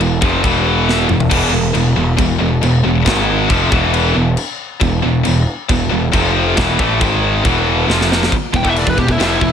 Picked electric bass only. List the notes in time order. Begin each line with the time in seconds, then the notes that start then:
0.00 E1
0.22 F1
0.44 E1
1.09 E1
1.31 E1
1.53 E1
1.75 E1
1.96 E1
2.19 E1
2.40 E1
2.63 E1
2.84 E1
3.06 G#1
3.50 F1
3.72 E1
4.15 E1
4.81 E1
5.04 E1
5.27 E1
5.69 E1
5.92 E1
6.14 F1
6.58 E1
6.80 A1
7.01 G#1
7.45 E1
7.88 F1
8.32 muted picked electric bass stroke
8.53 E1
8.65 E1
8.87 E1
8.98 E1
9.09 E1
9.19 F1
9.41 E1